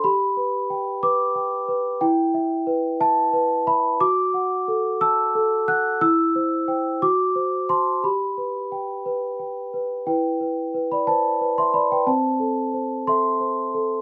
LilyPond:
\new Staff \with { instrumentName = "Celesta" } { \time 6/8 \key g \major \tempo 4. = 60 << { b''4. d'''4. | g''4. a''4 b''8 | d'''4. e'''4 fis'''8 | e'''4. d'''4 c'''8 |
b''2~ b''8 r8 | <b' g''>4~ <b' g''>16 <d'' b''>16 <c'' a''>8. <e'' c'''>16 <d'' b''>16 <b' g''>16 | <c'' a''>4. <e'' c'''>4. | } \\ { g'8 b'8 g''8 b'8 g''8 b'8 | e'8 e''8 b'8 e''8 b'8 e''8 | fis'8 fis''8 a'8 a''8 a'8 fis''8 | e'8 c''8 <c'' g''>8 fis'8 c''8 <c'' a''>8 |
g'8 b'8 g''8 b'8 g''8 b'8 | e'8 b'8 b'8 b'8 b'8 b'8 | c'8 a'8 c''8 a'8 c''8 a'8 | } >> }